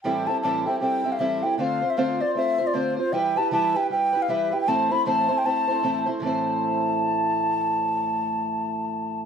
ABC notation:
X:1
M:4/4
L:1/16
Q:"Swing" 1/4=155
K:Am
V:1 name="Flute"
g2 a2 a2 g2 g3 f e2 g2 | f3 e f2 d2 e3 d c2 c2 | g2 a2 a2 g2 g3 f e2 g g | a2 b2 a3 g a6 z2 |
a16- | a16 |]
V:2 name="Twelve-string acoustic guitar"
[A,,E,G,CEA]2 [G,CEA]2 [A,,E,G,CEA]2 [G,CEA]2 [G,CEA]2 [G,CEA]2 [A,,E,G,CEA]2 [G,CEA]2 | [D,A,CFc]2 [CFc]2 [D,A,CFc]2 [CFc]2 [A,CFc]2 [CFc]2 [D,A,CFc]2 [CFc]2 | [E,G,EGB]2 [EGB]2 [E,G,EGB]2 [EGB]2 [G,EGB]2 [EGB]2 [E,G,EGB]2 [EGB]2 | [A,,E,A,CEc]2 [A,CEc]2 [A,,E,A,CEc]2 [A,CEc]2 [A,CEc]2 [A,CEc]2 [A,,E,A,CEc]2 [A,CEc]2 |
[A,,E,A,CEc]16- | [A,,E,A,CEc]16 |]